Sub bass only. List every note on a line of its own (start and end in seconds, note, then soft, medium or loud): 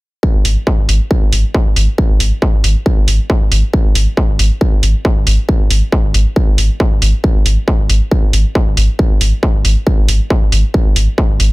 0.34 0.44 G#1 medium
0.45 0.56 G#1 loud
0.78 0.88 G#1 medium
0.89 1.00 G#1 medium
1.22 1.32 G#1 medium
1.33 1.43 G#1 loud
1.66 1.76 G#1 medium
1.76 1.87 G#1 loud
2.10 2.20 G#1 medium
2.20 2.31 G#1 medium
2.53 2.63 G#1 medium
2.64 2.75 G#1 medium
2.97 3.07 G#1 medium
3.08 3.19 G#1 loud
3.41 3.51 G#1 medium
3.52 3.62 G#1 loud
3.85 3.95 G#1 medium
3.95 4.06 G#1 loud
4.28 4.38 G#1 medium
4.39 4.50 G#1 medium
4.72 4.82 G#1 medium
4.83 4.94 G#1 loud
5.16 5.26 G#1 medium
5.27 5.38 G#1 loud
5.60 5.70 G#1 medium
5.70 5.81 G#1 loud
6.03 6.14 G#1 medium
6.14 6.25 G#1 medium
6.47 6.57 G#1 medium
6.58 6.69 G#1 loud
6.91 7.01 G#1 medium
7.02 7.13 G#1 loud
7.35 7.45 G#1 medium
7.46 7.57 G#1 loud
7.79 7.89 G#1 medium
7.89 8.00 G#1 medium
8.22 8.33 G#1 medium
8.33 8.44 G#1 loud
8.66 8.76 G#1 medium
8.77 8.88 G#1 loud
9.10 9.20 G#1 medium
9.21 9.32 G#1 loud
9.54 9.64 G#1 medium
9.65 9.76 G#1 medium
9.98 10.08 G#1 medium
10.09 10.19 G#1 loud
10.42 10.52 G#1 medium
10.52 10.63 G#1 loud
10.85 10.95 G#1 medium
10.96 11.07 G#1 loud
11.29 11.39 G#1 medium
11.40 11.51 G#1 loud